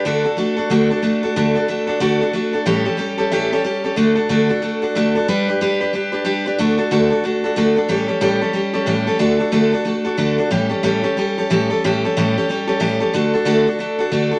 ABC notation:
X:1
M:4/4
L:1/8
Q:"Swing" 1/4=183
K:D
V:1 name="Steel-string acoustic guitar"
[D,A,DFA] [DFA] [A,DFA] [DFA] [D,A,DFA] [DFA] [A,DFA] [DFA] | [D,A,DFA] [DFA] [A,DFA] [DFA] [D,A,DFA] [DFA] [A,DFA] [DFA] | [A,,E,G,CGA] [G,CGA] [G,CGA] [G,CGA] [A,,E,G,CGA] [G,CGA] [G,CGA] [G,CGA] | [D,A,DFA] [DFA] [D,A,DFA] [DFA] [A,DFA] [DFA] [D,A,DFA] [DFA] |
[G,DGB] [DGB] [G,DGB] [DGB] [G,DGB] [DGB] [G,DGB] [DGB] | [D,A,DFA] [DFA] [D,A,DFA] [DFA] [A,DFA] [DFA] [D,A,DFA] [DFA] | [A,,E,G,CGA] [G,CGA] [A,,E,G,CGA] [G,CGA] [G,CGA] [G,CGA] [A,,E,G,CGA] [G,CGA] | [D,A,DFA] [DFA] [D,A,DFA] [DFA] [A,DFA] [DFA] [D,A,DFA] [DFA] |
[A,,E,G,CGA] [G,CGA] [A,,E,G,CGA] [G,CGA] [G,CGA] [G,CGA] [A,,E,G,CGA] [G,CGA] | [A,,E,G,CGA] [G,CGA] [A,,E,G,CGA] [G,CGA] [G,CGA] [G,CGA] [A,,E,G,CGA] [G,CGA] | [D,A,DFA] [DFA] [D,A,DFA] [DFA] [A,DFA] [DFA] [D,A,DFA] [DFA] |]